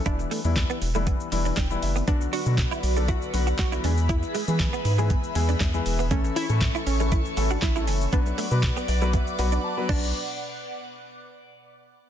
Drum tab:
CC |----------------|----------------|----------------|----------------|
HH |x-o-x-o-x-o-x-o-|x-o-x-o-x-o-x-o-|x-o-x-o-x-o-x-o-|x-o-x-o-x-o-x-o-|
SH |xxxxxxxxxxxxxxxx|xxxxxxxxxxxxxxxx|xxxxxxxxxxxxxxxx|xxxxxxxxxxxxxxxx|
CP |----x-------x---|----x-------x---|----x-------x---|----x-------x---|
SD |----o-------o---|----o-------o---|----o-------o---|----o-------o---|
BD |o---o---o---o---|o---o---o---o---|o---o---o---o---|o---o---o---o---|

CC |--------------x-|----------------|
HH |x-o-x-o-x-o-----|----------------|
SH |xxxxxxxxxxxx----|----------------|
CP |----x-----------|----------------|
SD |----o-----------|----------------|
BD |o---o---o-----o-|----------------|